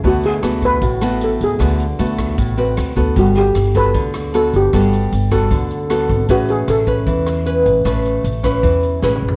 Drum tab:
HH |x--x--x--x--x--x--x--x--|x--x--x--x--x--x--x--x--|x--x--x--x--x--x--x--x--|x--x--x--x--x--x--x--x--|
SD |------r--------r--------|r--------r--------r-----|------r--------r--------|r--------r--------r-----|
T2 |------------------------|------------------------|------------------------|------------------------|
FT |------------------------|------------------------|------------------------|------------------------|
BD |o--------o--o-----------|o--------o--o--------o--|o--------o--o-----------|o--------o--o--------o--|

HH |x--x--x--x--x--x--x--x--|x--x--x--x--x--x--------|
SD |------r--------r--------|r--------r--------o-----|
T2 |------------------------|--------------------o---|
FT |------------------------|----------------------o-|
BD |o--------o--o-----------|o--------o--o-----------|